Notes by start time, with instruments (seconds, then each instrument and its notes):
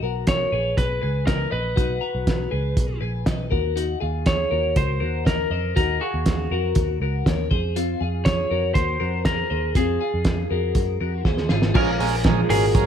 0.03 picked electric bass B1, clean electric guitar F#4 A#4
0.27 lead electric guitar C#5, kick, snare, closed hi-hat
0.52 picked electric bass A#1, clean electric guitar G#4 B4
0.78 picked electric bass B1, lead electric guitar B4, kick, closed hi-hat
1.02 picked electric bass C#2, clean electric guitar G#4 B4
1.27 lead electric guitar A#4, clean electric guitar B4 D#5, kick, snare, closed hi-hat
1.51 picked electric bass A#1, clean electric guitar B4 D#5, lead electric guitar B4
1.76 picked electric bass B1, clean electric guitar D#4 F#4, kick, closed hi-hat
2.01 clean electric guitar F#4 A#5
2.15 picked electric bass B1
2.27 kick, snare, closed hi-hat
2.51 picked electric bass C#2, clean electric guitar G#4 B4
2.77 picked electric bass B1, kick, closed hi-hat
3.01 picked electric bass A#1, clean electric guitar G#4 B4
3.26 clean electric guitar B4 D#5, kick, snare, closed hi-hat
3.51 picked electric bass D#2, clean electric guitar F#4 A#4, kick
3.76 clean electric guitar D#4 F#4, closed hi-hat
4.00 picked electric bass D#2, clean electric guitar F4 G#4
4.26 lead electric guitar C#5, kick, snare, closed hi-hat
4.51 picked electric bass D#2, clean electric guitar F#4 A#4
4.76 picked electric bass C#2, lead electric guitar C5, kick, closed hi-hat
5.00 picked electric bass D#2, clean electric guitar F#4 A#4
5.25 clean electric guitar A#4 D#5, lead electric guitar A#4, kick, snare, closed hi-hat
5.50 picked electric bass F2, clean electric guitar C5 D#5
5.76 picked electric bass D#2, clean electric guitar D#4 F#4, lead electric guitar A#4, kick, closed hi-hat
6.01 lead electric guitar F#4, clean electric guitar G#4 F5
6.14 picked electric bass D#2
6.26 kick, snare, closed hi-hat
6.51 picked electric bass F2, clean electric guitar F#4 A#4
6.75 picked electric bass D#2, kick, closed hi-hat
7.00 picked electric bass C#2, clean electric guitar F#4 A#4
7.26 picked electric bass D#2, clean electric guitar A#4 C#5, kick, snare, closed hi-hat
7.51 picked electric bass F2, clean electric guitar G#4 C5, kick
7.76 clean electric guitar C4 F4, closed hi-hat
8.01 picked electric bass F2, clean electric guitar F4 G#4
8.25 lead electric guitar C#5, kick, snare, closed hi-hat
8.51 picked electric bass F2, clean electric guitar F#4 A#4
8.74 picked electric bass D#2, lead electric guitar C5, kick, closed hi-hat
9.00 picked electric bass F2, clean electric guitar F#4 A#4
9.25 clean electric guitar G#4 C5, lead electric guitar A#4, kick, snare, closed hi-hat
9.50 picked electric bass D#2, clean electric guitar G#4 C5
9.75 picked electric bass F2, clean electric guitar C4 F4, lead electric guitar G#4, kick, closed hi-hat
10.01 clean electric guitar F4 G#4
10.14 picked electric bass F2
10.25 kick, snare, closed hi-hat
10.51 picked electric bass F2, clean electric guitar F#4 A#4
10.75 picked electric bass F#2, kick, closed hi-hat
11.01 picked electric bass F2, clean electric guitar F#4 A#4
11.25 picked electric bass D#2, clean electric guitar G#4 C5, kick, snare
11.38 snare
11.49 picked electric bass G#1, clean electric guitar F4 G#4, snare
11.62 snare
11.74 picked electric bass A#1, steel-string acoustic guitar A#2 F3 G#3 C#4 F4, transistor combo organ C#4 G#4 A#4, clean electric guitar C#4 F4, lead electric guitar A#4, kick, crash
11.99 picked electric bass A#1, steel-string acoustic guitar G#3 C#4 F4, transistor combo organ C#4 G#4 A#4, clean electric guitar F4 G#4, open hi-hat
12.24 steel-string acoustic guitar A#2 F3 G#3 C#4 F4, transistor combo organ C#4 G#4 A#4, kick, snare, closed hi-hat
12.49 picked electric bass G#1, transistor combo organ C#4 G#4 A#4, clean electric guitar F#4 A#4, lead electric guitar G#4, open hi-hat
12.74 steel-string acoustic guitar F3 G#3 C#4 F4, transistor combo organ C#4 G#4 A#4, kick, closed hi-hat